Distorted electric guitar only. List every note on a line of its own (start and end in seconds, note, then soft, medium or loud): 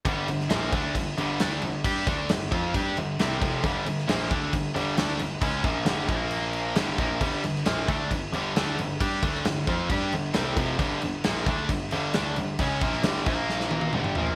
0.05 0.27 G2 loud
0.05 0.28 D3 medium
0.05 0.28 G3 loud
0.28 0.46 G2 medium
0.28 0.46 D3 medium
0.49 0.72 A#2 medium
0.49 0.72 F3 medium
0.49 0.72 A#3 medium
0.73 0.94 D3 medium
0.73 0.95 A3 loud
0.73 0.95 D4 loud
0.95 1.13 G2 medium
0.95 1.13 D3 medium
1.17 1.39 G2 loud
1.17 1.38 D3 loud
1.17 1.40 G3 medium
1.40 1.61 D3 medium
1.40 1.62 A3 loud
1.40 1.62 D4 loud
1.62 1.80 G2 medium
1.62 1.81 D3 medium
1.85 2.06 G3 loud
1.85 2.06 D4 loud
1.85 2.07 G4 loud
2.07 2.29 D3 medium
2.07 2.29 A3 loud
2.07 2.29 D4 loud
2.31 2.48 G2 medium
2.31 2.48 D3 medium
2.51 2.73 F3 medium
2.51 2.73 C4 loud
2.51 2.74 F4 loud
2.74 2.96 G3 medium
2.74 2.96 D4 loud
2.74 2.97 G4 loud
2.98 3.15 G2 medium
2.98 3.15 D3 medium
3.20 3.41 C3 medium
3.20 3.41 G3 medium
3.20 3.41 C4 medium
3.42 3.63 F2 medium
3.42 3.63 C3 loud
3.42 3.64 F3 loud
3.64 3.86 G2 medium
3.64 3.86 D3 medium
3.64 3.86 G3 loud
3.87 4.04 G2 medium
3.87 4.04 D3 medium
4.08 4.30 A#2 medium
4.08 4.30 F3 loud
4.08 4.30 A#3 loud
4.30 4.52 D3 medium
4.30 4.52 A3 medium
4.30 4.53 D4 loud
4.53 4.71 G2 medium
4.53 4.71 D3 medium
4.74 4.96 G2 medium
4.74 4.96 D3 medium
4.74 4.97 G3 loud
4.97 5.19 D3 loud
4.97 5.19 A3 medium
4.97 5.20 D4 loud
5.20 5.38 G2 medium
5.20 5.38 D3 medium
5.41 5.63 C#3 medium
5.41 5.64 G#3 loud
5.41 5.64 C#4 loud
5.64 5.86 A#2 loud
5.64 5.86 F3 loud
5.64 5.87 A#3 loud
5.87 6.09 G2 loud
5.87 6.09 D3 loud
5.87 6.10 G3 loud
6.09 6.76 A#2 medium
6.09 6.76 F3 loud
6.09 6.76 A#3 loud
6.77 6.99 G2 loud
6.77 6.99 D3 loud
6.77 6.99 G3 loud
7.00 7.21 A#2 medium
7.00 7.21 F3 loud
7.00 7.21 A#3 loud
7.21 7.43 G2 medium
7.21 7.43 D3 loud
7.21 7.44 G3 loud
7.44 7.62 G2 medium
7.44 7.62 D3 medium
7.66 7.88 A#2 medium
7.66 7.88 F3 medium
7.66 7.88 A#3 medium
7.89 8.11 D3 medium
7.89 8.11 A3 medium
7.89 8.11 D4 medium
8.12 8.29 G2 medium
8.12 8.29 D3 medium
8.34 8.56 G2 loud
8.34 8.55 D3 medium
8.34 8.56 G3 loud
8.56 8.78 D3 loud
8.56 8.78 A3 medium
8.56 8.78 D4 medium
8.79 8.97 G2 medium
8.79 8.97 D3 medium
9.01 9.23 G3 medium
9.01 9.22 D4 loud
9.01 9.23 G4 loud
9.23 9.45 D3 medium
9.23 9.45 A3 medium
9.23 9.45 D4 loud
9.46 9.64 G2 medium
9.46 9.64 D3 medium
9.68 9.90 F3 medium
9.68 9.90 C4 loud
9.68 9.90 F4 medium
9.90 10.12 G3 medium
9.90 10.13 D4 loud
9.90 10.13 G4 loud
10.13 10.31 G2 medium
10.13 10.31 D3 medium
10.34 10.56 C3 medium
10.34 10.57 G3 loud
10.34 10.57 C4 loud
10.56 10.78 F2 medium
10.56 10.79 C3 medium
10.56 10.79 F3 loud
10.78 11.01 G2 loud
10.78 11.01 D3 loud
10.78 11.01 G3 loud
11.02 11.20 G2 medium
11.02 11.20 D3 medium
11.24 11.46 A#2 loud
11.24 11.46 F3 loud
11.24 11.47 A#3 loud
11.46 11.69 D3 medium
11.46 11.69 A3 medium
11.46 11.69 D4 medium
11.70 11.88 G2 medium
11.70 11.88 D3 medium
11.92 12.14 G2 medium
11.92 12.13 D3 loud
11.92 12.14 G3 loud
12.14 12.36 D3 medium
12.14 12.36 A3 loud
12.14 12.37 D4 loud
12.37 12.55 G2 medium
12.37 12.55 D3 medium
12.60 12.81 C#3 medium
12.60 12.82 G#3 medium
12.60 12.82 C#4 loud
12.82 13.03 A#2 medium
12.82 13.04 F3 medium
12.82 13.05 A#3 loud
13.03 13.26 G2 loud
13.03 13.27 D3 medium
13.03 13.27 G3 loud
13.27 13.94 A#2 medium
13.27 13.94 F3 loud
13.27 13.94 A#3 loud
13.94 14.16 G2 medium
13.94 14.16 D3 loud
13.94 14.17 G3 loud
14.16 14.35 A#2 medium
14.16 14.35 F3 medium
14.16 14.35 A#3 loud